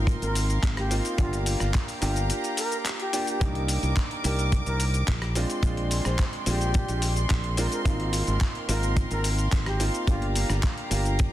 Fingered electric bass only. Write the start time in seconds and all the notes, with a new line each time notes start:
Already playing: G#1
0.22 G#1
0.63 G#1
1.19 G1
1.61 G1
2.02 G1
3.41 C2
3.83 C2
4.25 C2
4.67 C2
5.08 A#1
5.63 A#1
6.06 A#1
6.47 A#1
6.89 A#1
7.30 A#1
7.85 G#1
8.28 G#1
8.69 G#1
9.11 G#1
9.52 G#1
10.07 G1
10.49 G1
10.91 G1